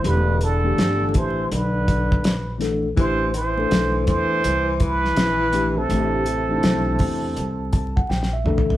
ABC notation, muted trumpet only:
X:1
M:4/4
L:1/16
Q:"Swing 16ths" 1/4=82
K:Am
V:1 name="Muted trumpet"
B2 A4 c2 B6 z2 | c2 c4 c4 B4- B A- | A12 z4 |]